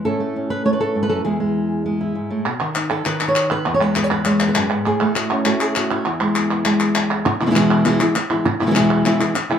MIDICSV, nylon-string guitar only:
0, 0, Header, 1, 3, 480
1, 0, Start_track
1, 0, Key_signature, 4, "major"
1, 0, Tempo, 300150
1, 83, Time_signature, 4, 2, 24, 8
1, 15335, End_track
2, 0, Start_track
2, 0, Title_t, "Nylon-string guitar"
2, 0, Program_c, 0, 24
2, 79, Note_on_c, 0, 45, 68
2, 80, Note_on_c, 0, 69, 103
2, 91, Note_on_c, 0, 57, 48
2, 100, Note_on_c, 0, 61, 44
2, 113, Note_on_c, 0, 64, 45
2, 304, Note_off_c, 0, 57, 0
2, 323, Note_on_c, 0, 57, 61
2, 560, Note_off_c, 0, 61, 0
2, 579, Note_on_c, 0, 61, 45
2, 798, Note_off_c, 0, 64, 0
2, 804, Note_on_c, 0, 71, 93
2, 1023, Note_off_c, 0, 57, 0
2, 1041, Note_on_c, 0, 57, 64
2, 1043, Note_off_c, 0, 71, 0
2, 1050, Note_on_c, 0, 73, 111
2, 1159, Note_off_c, 0, 73, 0
2, 1166, Note_on_c, 0, 71, 91
2, 1269, Note_off_c, 0, 69, 0
2, 1288, Note_on_c, 0, 69, 105
2, 1525, Note_on_c, 0, 44, 52
2, 1623, Note_off_c, 0, 71, 0
2, 1642, Note_on_c, 0, 71, 95
2, 1732, Note_off_c, 0, 69, 0
2, 1751, Note_on_c, 0, 69, 99
2, 1753, Note_off_c, 0, 44, 0
2, 1760, Note_on_c, 0, 42, 63
2, 1976, Note_off_c, 0, 57, 0
2, 1984, Note_off_c, 0, 42, 0
2, 1985, Note_off_c, 0, 61, 0
2, 1988, Note_off_c, 0, 69, 0
2, 1990, Note_on_c, 0, 40, 68
2, 1995, Note_on_c, 0, 68, 88
2, 2004, Note_off_c, 0, 45, 0
2, 2004, Note_off_c, 0, 71, 0
2, 2004, Note_on_c, 0, 56, 48
2, 2015, Note_on_c, 0, 64, 48
2, 2221, Note_off_c, 0, 56, 0
2, 2240, Note_on_c, 0, 56, 66
2, 2950, Note_off_c, 0, 56, 0
2, 2969, Note_on_c, 0, 56, 69
2, 3188, Note_off_c, 0, 64, 0
2, 3208, Note_on_c, 0, 64, 50
2, 3436, Note_off_c, 0, 40, 0
2, 3443, Note_on_c, 0, 44, 58
2, 3685, Note_off_c, 0, 44, 0
2, 3685, Note_on_c, 0, 45, 64
2, 3900, Note_off_c, 0, 56, 0
2, 3920, Note_off_c, 0, 68, 0
2, 3926, Note_off_c, 0, 45, 0
2, 3927, Note_off_c, 0, 64, 0
2, 3930, Note_on_c, 0, 47, 71
2, 4168, Note_on_c, 0, 51, 54
2, 4169, Note_off_c, 0, 47, 0
2, 4420, Note_on_c, 0, 63, 50
2, 4650, Note_on_c, 0, 69, 92
2, 4866, Note_off_c, 0, 51, 0
2, 4885, Note_on_c, 0, 51, 68
2, 4888, Note_off_c, 0, 69, 0
2, 4895, Note_on_c, 0, 71, 108
2, 5122, Note_off_c, 0, 63, 0
2, 5141, Note_on_c, 0, 63, 44
2, 5245, Note_off_c, 0, 71, 0
2, 5251, Note_on_c, 0, 73, 100
2, 5609, Note_off_c, 0, 73, 0
2, 5621, Note_on_c, 0, 71, 108
2, 5817, Note_off_c, 0, 51, 0
2, 5825, Note_off_c, 0, 63, 0
2, 5848, Note_on_c, 0, 40, 68
2, 5974, Note_off_c, 0, 71, 0
2, 5987, Note_on_c, 0, 73, 93
2, 6088, Note_on_c, 0, 56, 69
2, 6105, Note_off_c, 0, 73, 0
2, 6105, Note_on_c, 0, 71, 100
2, 6321, Note_off_c, 0, 71, 0
2, 6340, Note_on_c, 0, 71, 99
2, 6458, Note_off_c, 0, 71, 0
2, 6458, Note_on_c, 0, 73, 93
2, 6569, Note_off_c, 0, 73, 0
2, 6575, Note_on_c, 0, 71, 90
2, 6787, Note_off_c, 0, 56, 0
2, 6806, Note_on_c, 0, 56, 65
2, 6813, Note_off_c, 0, 71, 0
2, 6813, Note_on_c, 0, 73, 109
2, 7057, Note_on_c, 0, 59, 52
2, 7168, Note_off_c, 0, 73, 0
2, 7174, Note_on_c, 0, 71, 88
2, 7277, Note_off_c, 0, 71, 0
2, 7280, Note_off_c, 0, 40, 0
2, 7286, Note_on_c, 0, 42, 61
2, 7296, Note_on_c, 0, 71, 88
2, 7525, Note_off_c, 0, 42, 0
2, 7531, Note_on_c, 0, 44, 61
2, 7737, Note_off_c, 0, 56, 0
2, 7769, Note_off_c, 0, 44, 0
2, 7771, Note_off_c, 0, 71, 0
2, 7772, Note_off_c, 0, 59, 0
2, 7779, Note_on_c, 0, 45, 65
2, 7781, Note_on_c, 0, 68, 99
2, 8020, Note_on_c, 0, 57, 69
2, 8239, Note_off_c, 0, 68, 0
2, 8246, Note_on_c, 0, 66, 89
2, 8503, Note_on_c, 0, 61, 51
2, 8707, Note_off_c, 0, 57, 0
2, 8710, Note_off_c, 0, 66, 0
2, 8725, Note_on_c, 0, 57, 69
2, 8731, Note_on_c, 0, 66, 91
2, 8980, Note_off_c, 0, 66, 0
2, 8980, Note_on_c, 0, 68, 100
2, 9213, Note_off_c, 0, 68, 0
2, 9229, Note_on_c, 0, 66, 87
2, 9454, Note_on_c, 0, 64, 81
2, 9657, Note_off_c, 0, 57, 0
2, 9665, Note_off_c, 0, 61, 0
2, 9685, Note_on_c, 0, 40, 69
2, 9692, Note_off_c, 0, 45, 0
2, 9697, Note_off_c, 0, 66, 0
2, 9928, Note_on_c, 0, 56, 58
2, 10189, Note_on_c, 0, 59, 46
2, 10397, Note_off_c, 0, 59, 0
2, 10416, Note_on_c, 0, 59, 51
2, 10625, Note_off_c, 0, 56, 0
2, 10644, Note_on_c, 0, 56, 65
2, 10877, Note_off_c, 0, 59, 0
2, 10896, Note_on_c, 0, 59, 48
2, 11118, Note_off_c, 0, 64, 0
2, 11137, Note_on_c, 0, 64, 44
2, 11355, Note_off_c, 0, 64, 0
2, 11374, Note_on_c, 0, 64, 44
2, 11575, Note_off_c, 0, 56, 0
2, 11587, Note_off_c, 0, 40, 0
2, 11819, Note_off_c, 0, 64, 0
2, 11836, Note_off_c, 0, 59, 0
2, 11838, Note_on_c, 0, 64, 51
2, 11855, Note_on_c, 0, 59, 47
2, 11862, Note_on_c, 0, 47, 60
2, 11866, Note_on_c, 0, 52, 61
2, 11868, Note_on_c, 0, 56, 42
2, 11870, Note_off_c, 0, 64, 0
2, 11887, Note_off_c, 0, 59, 0
2, 11898, Note_off_c, 0, 52, 0
2, 11899, Note_off_c, 0, 56, 0
2, 11915, Note_off_c, 0, 47, 0
2, 11934, Note_on_c, 0, 47, 73
2, 11941, Note_on_c, 0, 52, 66
2, 11943, Note_on_c, 0, 56, 71
2, 11947, Note_on_c, 0, 59, 68
2, 11949, Note_on_c, 0, 64, 84
2, 11982, Note_off_c, 0, 47, 0
2, 11987, Note_off_c, 0, 52, 0
2, 11997, Note_off_c, 0, 56, 0
2, 12002, Note_off_c, 0, 64, 0
2, 12002, Note_on_c, 0, 47, 83
2, 12004, Note_off_c, 0, 59, 0
2, 12006, Note_on_c, 0, 52, 80
2, 12016, Note_on_c, 0, 56, 77
2, 12021, Note_on_c, 0, 64, 93
2, 12023, Note_on_c, 0, 59, 91
2, 12060, Note_off_c, 0, 47, 0
2, 12064, Note_off_c, 0, 52, 0
2, 12073, Note_off_c, 0, 56, 0
2, 12073, Note_off_c, 0, 64, 0
2, 12075, Note_off_c, 0, 59, 0
2, 12075, Note_on_c, 0, 40, 94
2, 12080, Note_on_c, 0, 47, 91
2, 12083, Note_on_c, 0, 52, 88
2, 12092, Note_on_c, 0, 56, 97
2, 12092, Note_on_c, 0, 64, 106
2, 12095, Note_on_c, 0, 59, 87
2, 12543, Note_off_c, 0, 40, 0
2, 12552, Note_off_c, 0, 47, 0
2, 12554, Note_off_c, 0, 52, 0
2, 12559, Note_off_c, 0, 56, 0
2, 12559, Note_off_c, 0, 64, 0
2, 12560, Note_off_c, 0, 59, 0
2, 12562, Note_on_c, 0, 40, 83
2, 12568, Note_on_c, 0, 47, 84
2, 12576, Note_on_c, 0, 52, 94
2, 12582, Note_on_c, 0, 56, 73
2, 12589, Note_on_c, 0, 59, 89
2, 12593, Note_on_c, 0, 64, 81
2, 12771, Note_off_c, 0, 64, 0
2, 12789, Note_off_c, 0, 59, 0
2, 12790, Note_on_c, 0, 64, 66
2, 12793, Note_off_c, 0, 40, 0
2, 12796, Note_off_c, 0, 47, 0
2, 12799, Note_off_c, 0, 56, 0
2, 12800, Note_off_c, 0, 52, 0
2, 12809, Note_on_c, 0, 59, 47
2, 12818, Note_on_c, 0, 56, 58
2, 12829, Note_on_c, 0, 52, 47
2, 13024, Note_off_c, 0, 52, 0
2, 13028, Note_off_c, 0, 56, 0
2, 13028, Note_off_c, 0, 64, 0
2, 13030, Note_off_c, 0, 59, 0
2, 13275, Note_on_c, 0, 64, 53
2, 13293, Note_on_c, 0, 59, 55
2, 13302, Note_on_c, 0, 56, 57
2, 13318, Note_on_c, 0, 52, 46
2, 13510, Note_off_c, 0, 64, 0
2, 13519, Note_off_c, 0, 59, 0
2, 13523, Note_off_c, 0, 56, 0
2, 13531, Note_off_c, 0, 52, 0
2, 13751, Note_on_c, 0, 64, 55
2, 13767, Note_on_c, 0, 59, 54
2, 13774, Note_on_c, 0, 56, 46
2, 13781, Note_on_c, 0, 47, 59
2, 13783, Note_off_c, 0, 64, 0
2, 13785, Note_on_c, 0, 52, 41
2, 13799, Note_off_c, 0, 59, 0
2, 13800, Note_on_c, 0, 64, 73
2, 13806, Note_off_c, 0, 56, 0
2, 13817, Note_off_c, 0, 52, 0
2, 13836, Note_off_c, 0, 47, 0
2, 13855, Note_off_c, 0, 64, 0
2, 13855, Note_on_c, 0, 47, 79
2, 13860, Note_on_c, 0, 52, 71
2, 13864, Note_on_c, 0, 56, 73
2, 13866, Note_on_c, 0, 59, 73
2, 13874, Note_on_c, 0, 64, 80
2, 13906, Note_off_c, 0, 47, 0
2, 13913, Note_off_c, 0, 52, 0
2, 13915, Note_off_c, 0, 56, 0
2, 13924, Note_off_c, 0, 59, 0
2, 13924, Note_off_c, 0, 64, 0
2, 13925, Note_on_c, 0, 47, 84
2, 13932, Note_on_c, 0, 52, 88
2, 13934, Note_on_c, 0, 56, 87
2, 13943, Note_on_c, 0, 59, 93
2, 13943, Note_on_c, 0, 64, 79
2, 13981, Note_off_c, 0, 47, 0
2, 13987, Note_off_c, 0, 52, 0
2, 13992, Note_off_c, 0, 59, 0
2, 13993, Note_off_c, 0, 56, 0
2, 13996, Note_off_c, 0, 64, 0
2, 13997, Note_on_c, 0, 40, 85
2, 14001, Note_on_c, 0, 47, 97
2, 14006, Note_on_c, 0, 52, 104
2, 14011, Note_on_c, 0, 59, 105
2, 14012, Note_on_c, 0, 56, 91
2, 14016, Note_on_c, 0, 64, 97
2, 14454, Note_off_c, 0, 40, 0
2, 14459, Note_off_c, 0, 47, 0
2, 14468, Note_off_c, 0, 52, 0
2, 14473, Note_on_c, 0, 40, 84
2, 14478, Note_off_c, 0, 56, 0
2, 14478, Note_off_c, 0, 59, 0
2, 14478, Note_on_c, 0, 47, 94
2, 14480, Note_off_c, 0, 64, 0
2, 14487, Note_on_c, 0, 52, 79
2, 14499, Note_on_c, 0, 56, 88
2, 14500, Note_on_c, 0, 59, 85
2, 14508, Note_on_c, 0, 64, 91
2, 14684, Note_off_c, 0, 64, 0
2, 14699, Note_off_c, 0, 59, 0
2, 14703, Note_on_c, 0, 64, 60
2, 14708, Note_off_c, 0, 40, 0
2, 14711, Note_off_c, 0, 47, 0
2, 14712, Note_off_c, 0, 56, 0
2, 14716, Note_off_c, 0, 52, 0
2, 14718, Note_on_c, 0, 59, 58
2, 14731, Note_on_c, 0, 56, 50
2, 14740, Note_on_c, 0, 52, 50
2, 14934, Note_off_c, 0, 52, 0
2, 14934, Note_off_c, 0, 56, 0
2, 14939, Note_off_c, 0, 59, 0
2, 14943, Note_off_c, 0, 64, 0
2, 15186, Note_on_c, 0, 64, 57
2, 15199, Note_on_c, 0, 59, 54
2, 15210, Note_on_c, 0, 56, 49
2, 15221, Note_on_c, 0, 52, 46
2, 15335, Note_off_c, 0, 52, 0
2, 15335, Note_off_c, 0, 56, 0
2, 15335, Note_off_c, 0, 59, 0
2, 15335, Note_off_c, 0, 64, 0
2, 15335, End_track
3, 0, Start_track
3, 0, Title_t, "Muted nylon-string guitar strokes"
3, 11607, Note_on_c, 9, 29, 75
3, 11767, Note_off_c, 9, 29, 0
3, 13035, Note_on_c, 9, 29, 76
3, 13195, Note_off_c, 9, 29, 0
3, 13523, Note_on_c, 9, 29, 81
3, 13683, Note_off_c, 9, 29, 0
3, 14944, Note_on_c, 9, 29, 78
3, 15104, Note_off_c, 9, 29, 0
3, 15335, End_track
0, 0, End_of_file